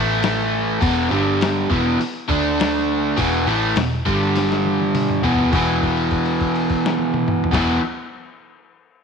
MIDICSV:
0, 0, Header, 1, 6, 480
1, 0, Start_track
1, 0, Key_signature, 1, "minor"
1, 0, Tempo, 588813
1, 666, Time_signature, 4, 2, 24, 8
1, 7367, End_track
2, 0, Start_track
2, 0, Title_t, "Overdriven electric guitar"
2, 0, Program_c, 0, 29
2, 0, Note_on_c, 0, 45, 91
2, 0, Note_on_c, 0, 52, 94
2, 0, Note_on_c, 0, 57, 102
2, 656, Note_off_c, 0, 52, 0
2, 657, Note_on_c, 0, 40, 105
2, 659, Note_off_c, 0, 45, 0
2, 663, Note_off_c, 0, 57, 0
2, 664, Note_on_c, 0, 47, 105
2, 666, Note_on_c, 0, 52, 113
2, 904, Note_off_c, 0, 40, 0
2, 904, Note_on_c, 0, 43, 84
2, 909, Note_off_c, 0, 47, 0
2, 909, Note_on_c, 0, 50, 84
2, 911, Note_off_c, 0, 52, 0
2, 911, Note_on_c, 0, 55, 97
2, 1377, Note_off_c, 0, 43, 0
2, 1380, Note_off_c, 0, 50, 0
2, 1381, Note_off_c, 0, 55, 0
2, 1383, Note_on_c, 0, 40, 101
2, 1386, Note_on_c, 0, 47, 103
2, 1391, Note_on_c, 0, 52, 108
2, 1616, Note_off_c, 0, 40, 0
2, 1618, Note_off_c, 0, 47, 0
2, 1620, Note_off_c, 0, 52, 0
2, 1859, Note_on_c, 0, 50, 96
2, 1867, Note_on_c, 0, 57, 100
2, 1868, Note_on_c, 0, 62, 107
2, 2574, Note_off_c, 0, 50, 0
2, 2578, Note_off_c, 0, 57, 0
2, 2578, Note_off_c, 0, 62, 0
2, 2581, Note_on_c, 0, 40, 104
2, 2583, Note_on_c, 0, 47, 106
2, 2588, Note_on_c, 0, 52, 112
2, 2815, Note_off_c, 0, 40, 0
2, 2816, Note_off_c, 0, 47, 0
2, 2819, Note_off_c, 0, 52, 0
2, 2823, Note_on_c, 0, 45, 92
2, 2829, Note_on_c, 0, 52, 96
2, 2837, Note_on_c, 0, 57, 93
2, 3056, Note_off_c, 0, 45, 0
2, 3059, Note_off_c, 0, 52, 0
2, 3063, Note_off_c, 0, 57, 0
2, 3065, Note_on_c, 0, 40, 59
2, 3069, Note_on_c, 0, 47, 71
2, 3256, Note_off_c, 0, 40, 0
2, 3258, Note_off_c, 0, 47, 0
2, 3306, Note_on_c, 0, 43, 84
2, 3310, Note_on_c, 0, 50, 99
2, 3314, Note_on_c, 0, 55, 108
2, 4258, Note_off_c, 0, 43, 0
2, 4260, Note_off_c, 0, 50, 0
2, 4262, Note_off_c, 0, 55, 0
2, 4265, Note_on_c, 0, 40, 95
2, 4269, Note_on_c, 0, 47, 100
2, 4274, Note_on_c, 0, 52, 100
2, 4487, Note_off_c, 0, 40, 0
2, 4497, Note_on_c, 0, 40, 103
2, 4499, Note_off_c, 0, 47, 0
2, 4502, Note_off_c, 0, 52, 0
2, 4518, Note_on_c, 0, 47, 105
2, 4530, Note_on_c, 0, 52, 120
2, 6124, Note_off_c, 0, 40, 0
2, 6127, Note_on_c, 0, 40, 97
2, 6144, Note_off_c, 0, 47, 0
2, 6147, Note_on_c, 0, 47, 94
2, 6159, Note_off_c, 0, 52, 0
2, 6162, Note_on_c, 0, 52, 111
2, 6348, Note_off_c, 0, 40, 0
2, 6359, Note_off_c, 0, 47, 0
2, 6366, Note_off_c, 0, 52, 0
2, 7367, End_track
3, 0, Start_track
3, 0, Title_t, "Picked electric bass"
3, 0, Program_c, 1, 34
3, 0, Note_on_c, 1, 33, 97
3, 632, Note_off_c, 1, 33, 0
3, 667, Note_on_c, 1, 28, 102
3, 889, Note_off_c, 1, 28, 0
3, 905, Note_on_c, 1, 31, 96
3, 1352, Note_off_c, 1, 31, 0
3, 1388, Note_on_c, 1, 28, 95
3, 1609, Note_off_c, 1, 28, 0
3, 1870, Note_on_c, 1, 38, 91
3, 2554, Note_off_c, 1, 38, 0
3, 2594, Note_on_c, 1, 28, 94
3, 2812, Note_off_c, 1, 28, 0
3, 2823, Note_on_c, 1, 33, 94
3, 3046, Note_off_c, 1, 33, 0
3, 3063, Note_on_c, 1, 28, 75
3, 3287, Note_off_c, 1, 28, 0
3, 3313, Note_on_c, 1, 31, 99
3, 4236, Note_off_c, 1, 31, 0
3, 4257, Note_on_c, 1, 28, 97
3, 4484, Note_off_c, 1, 28, 0
3, 4507, Note_on_c, 1, 28, 89
3, 6049, Note_off_c, 1, 28, 0
3, 6139, Note_on_c, 1, 28, 101
3, 6340, Note_off_c, 1, 28, 0
3, 7367, End_track
4, 0, Start_track
4, 0, Title_t, "Muted overdriven electric guitar strokes"
4, 1626, Note_on_c, 9, 29, 59
4, 1708, Note_off_c, 9, 29, 0
4, 7367, End_track
5, 0, Start_track
5, 0, Title_t, "Muted picked electric bass strokes"
5, 1621, Note_on_c, 9, 29, 43
5, 1702, Note_off_c, 9, 29, 0
5, 7367, End_track
6, 0, Start_track
6, 0, Title_t, "Drums"
6, 186, Note_on_c, 9, 46, 57
6, 195, Note_on_c, 9, 38, 123
6, 268, Note_off_c, 9, 46, 0
6, 277, Note_off_c, 9, 38, 0
6, 669, Note_on_c, 9, 36, 123
6, 669, Note_on_c, 9, 46, 63
6, 750, Note_off_c, 9, 36, 0
6, 751, Note_off_c, 9, 46, 0
6, 1152, Note_on_c, 9, 46, 60
6, 1161, Note_on_c, 9, 38, 115
6, 1234, Note_off_c, 9, 46, 0
6, 1243, Note_off_c, 9, 38, 0
6, 1391, Note_on_c, 9, 36, 106
6, 1473, Note_off_c, 9, 36, 0
6, 1637, Note_on_c, 9, 46, 71
6, 1718, Note_off_c, 9, 46, 0
6, 1872, Note_on_c, 9, 36, 81
6, 1953, Note_off_c, 9, 36, 0
6, 2119, Note_on_c, 9, 46, 64
6, 2128, Note_on_c, 9, 38, 116
6, 2200, Note_off_c, 9, 46, 0
6, 2209, Note_off_c, 9, 38, 0
6, 2589, Note_on_c, 9, 46, 69
6, 2591, Note_on_c, 9, 36, 118
6, 2670, Note_off_c, 9, 46, 0
6, 2672, Note_off_c, 9, 36, 0
6, 3064, Note_on_c, 9, 46, 61
6, 3073, Note_on_c, 9, 38, 112
6, 3146, Note_off_c, 9, 46, 0
6, 3155, Note_off_c, 9, 38, 0
6, 3310, Note_on_c, 9, 36, 100
6, 3391, Note_off_c, 9, 36, 0
6, 3551, Note_on_c, 9, 46, 65
6, 3560, Note_on_c, 9, 38, 70
6, 3632, Note_off_c, 9, 46, 0
6, 3641, Note_off_c, 9, 38, 0
6, 3685, Note_on_c, 9, 38, 62
6, 3766, Note_off_c, 9, 38, 0
6, 3792, Note_on_c, 9, 48, 74
6, 3874, Note_off_c, 9, 48, 0
6, 3910, Note_on_c, 9, 48, 77
6, 3991, Note_off_c, 9, 48, 0
6, 4033, Note_on_c, 9, 46, 62
6, 4033, Note_on_c, 9, 47, 96
6, 4114, Note_off_c, 9, 46, 0
6, 4114, Note_off_c, 9, 47, 0
6, 4154, Note_on_c, 9, 45, 79
6, 4236, Note_off_c, 9, 45, 0
6, 4271, Note_on_c, 9, 43, 97
6, 4352, Note_off_c, 9, 43, 0
6, 4391, Note_on_c, 9, 43, 97
6, 4472, Note_off_c, 9, 43, 0
6, 4506, Note_on_c, 9, 49, 98
6, 4509, Note_on_c, 9, 36, 117
6, 4588, Note_off_c, 9, 49, 0
6, 4590, Note_off_c, 9, 36, 0
6, 4749, Note_on_c, 9, 36, 70
6, 4754, Note_on_c, 9, 49, 48
6, 4831, Note_off_c, 9, 36, 0
6, 4835, Note_off_c, 9, 49, 0
6, 4867, Note_on_c, 9, 57, 45
6, 4949, Note_off_c, 9, 57, 0
6, 4980, Note_on_c, 9, 49, 50
6, 4986, Note_on_c, 9, 36, 66
6, 5062, Note_off_c, 9, 49, 0
6, 5067, Note_off_c, 9, 36, 0
6, 5101, Note_on_c, 9, 57, 50
6, 5182, Note_off_c, 9, 57, 0
6, 5221, Note_on_c, 9, 49, 50
6, 5224, Note_on_c, 9, 36, 64
6, 5303, Note_off_c, 9, 49, 0
6, 5306, Note_off_c, 9, 36, 0
6, 5344, Note_on_c, 9, 57, 57
6, 5425, Note_off_c, 9, 57, 0
6, 5459, Note_on_c, 9, 49, 55
6, 5463, Note_on_c, 9, 36, 68
6, 5540, Note_off_c, 9, 49, 0
6, 5544, Note_off_c, 9, 36, 0
6, 5592, Note_on_c, 9, 38, 95
6, 5674, Note_off_c, 9, 38, 0
6, 5695, Note_on_c, 9, 48, 86
6, 5777, Note_off_c, 9, 48, 0
6, 5818, Note_on_c, 9, 47, 102
6, 5900, Note_off_c, 9, 47, 0
6, 5933, Note_on_c, 9, 45, 111
6, 6015, Note_off_c, 9, 45, 0
6, 6064, Note_on_c, 9, 43, 101
6, 6138, Note_on_c, 9, 36, 111
6, 6142, Note_on_c, 9, 49, 107
6, 6145, Note_off_c, 9, 43, 0
6, 6151, Note_on_c, 9, 38, 103
6, 6220, Note_off_c, 9, 36, 0
6, 6223, Note_off_c, 9, 49, 0
6, 6232, Note_off_c, 9, 38, 0
6, 7367, End_track
0, 0, End_of_file